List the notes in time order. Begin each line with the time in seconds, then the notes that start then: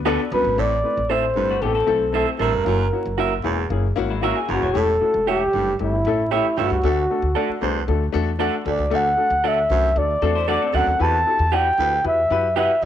Already playing: D2
0.06 B3 D4 F#4 A4 B4 D5
0.32 C2 F#2 B3 D4 F#4 B4
0.45 G#1
0.57 A1 A2 A3 C4 E4 A4 D5
0.84 A3 C4 E4 B4
0.97 A1
1.10 A3 C4 E4 A4 C5 E5
1.35 G1 G2 A3 C4 E4 B4
1.50 A3 F#4
1.61 A1 A3 B3 C4 E4 G4 A4
1.75 C4 A4
1.87 B1 A3 C4 E4 A4
2.12 A3 C4 E4 A4 C5 E5
2.38 A1 G2 A3 C4 E4 A4 A#4 C5 E5
2.53 F1
2.65 F#1 F#2 A#3 C#4 E4 F#4
2.92 A#3 C#4 E4 F#4
3.06 F#1
3.17 A#3 C#4 E4 F#4 A#4 E5
3.43 E1 E2 A#3 C#4 E4 G#4
3.70 F#1 A#3 C#4 E4 G#4
3.96 G#1 A#3 C#4 E4 F#4
4.10 G#3 E4
4.21 A#3 C#4 E4 F#4 A#4 E5
4.37 G#4
4.48 F#1 E2 A#3 C#4 E4 G#4 A#4
4.53 F#4
4.62 D#1 E4 C#5
4.74 E1 A2 A3 C#4 E4 G4
4.79 A4
5.01 A3 C#4 E4 F#4
5.14 E1
5.26 A3 C#4 E4 G4 A4 C#5 E5
5.53 F#1 G2 A3 C#4 E4 G4
5.79 G1 A3 C#4 E4 G4
6.05 A1 A3 C#4 E4 A4
6.31 A3 C#4 E4 G4 C#5 E5
6.57 G1 G2 A3 C#4 E4 F#4 G4 C#5 E5
6.70 C#2
6.83 D2 A3 D4 F#4 A4
7.10 A3 D4 F#4 A4
7.22 D2
7.35 A3 D4 F#4 A4 D5 F#5
7.49 muted upright bass stroke
7.61 C2 E2 A3 D4 F#4 C5
7.88 D2 A3 D4 F#4 A4
8.12 E2 A3 D4 F#4 A4
8.39 A3 D4 F#4 A4 D5 F#5
8.64 D2 A3 D4 F#4 A4
8.69 D5
8.78 C#2
8.90 D2 A3 D4 F#4 A4
8.96 F#5
9.17 A3 D4 F#4 A4
9.30 D2
9.44 A3 D4 F#4 A4 D5 F#5
9.48 E5
9.70 C2 F#2 A3 D4 F#4 C5
9.95 D2 A3 D4 F#4 A4 D5
10.22 E2 A3 C4 D4 F#4 A4
10.35 E4 C5
10.48 A3 D4 F#4 A4 D5 F#5
10.62 C4 A4
10.73 D2 F#2 A3 D4 F#4 A4 D5 F#5
10.87 D#2
10.99 E2 E4 F#4 G4 B4 A5
11.26 E4 F#4 G4 A4
11.39 E2
11.52 E4 F#4 G4 B4 D5 F#5 G5
11.78 D2 E4 F#4 G4 B4
12.04 E2 E4 F#4 G4 B4 E5
12.30 F#2 E4 F#4 G4 B4
12.56 E4 F#4 G4 B4 E5 F#5